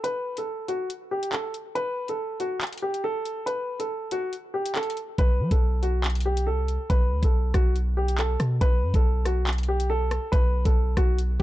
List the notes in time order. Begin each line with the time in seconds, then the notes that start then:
0.04 B4, closed hi-hat
0.37 A4, closed hi-hat
0.68 F#4, closed hi-hat
0.90 closed hi-hat
1.11 G4
1.23 closed hi-hat
1.33 A4, clap, closed hi-hat
1.54 closed hi-hat
1.75 B4, closed hi-hat
2.08 A4, closed hi-hat
2.40 F#4, closed hi-hat
2.61 clap, closed hi-hat
2.67 closed hi-hat
2.73 closed hi-hat
2.78 closed hi-hat
2.82 G4
2.94 closed hi-hat
3.04 A4
3.25 closed hi-hat
3.46 B4, closed hi-hat
3.80 A4, closed hi-hat
4.11 F#4, closed hi-hat
4.33 closed hi-hat
4.54 G4
4.66 closed hi-hat
4.75 A4, clap, closed hi-hat
4.83 closed hi-hat
4.90 closed hi-hat
4.97 closed hi-hat
5.18 B1 B4, kick, closed hi-hat
5.40 F#3
5.51 B1 A4, kick, closed hi-hat
5.83 F#4, closed hi-hat
6.04 clap, closed hi-hat
6.10 closed hi-hat
6.15 closed hi-hat
6.20 closed hi-hat
6.26 G4
6.37 closed hi-hat
6.47 C2 A4
6.68 closed hi-hat
6.90 B1 B4, kick, closed hi-hat
7.11 D2
7.23 B1 A4, kick, closed hi-hat
7.54 B1 F#4, kick, cross-stick, closed hi-hat
7.76 closed hi-hat
7.97 G4
8.08 closed hi-hat
8.18 A4, clap, closed hi-hat
8.40 B2, cross-stick, closed hi-hat
8.61 B1 B4, kick, closed hi-hat
8.83 F#2
8.94 B1 A4, kick, closed hi-hat
9.25 F#4, cross-stick, closed hi-hat
9.47 clap, closed hi-hat
9.53 closed hi-hat
9.58 closed hi-hat
9.63 closed hi-hat
9.68 G4
9.80 closed hi-hat
9.90 A4
10.11 cross-stick, closed hi-hat
10.32 B1 B4, kick, closed hi-hat
10.65 B1 A4, kick, closed hi-hat
10.97 B1 F#4, kick, cross-stick, closed hi-hat
11.18 closed hi-hat
11.39 G4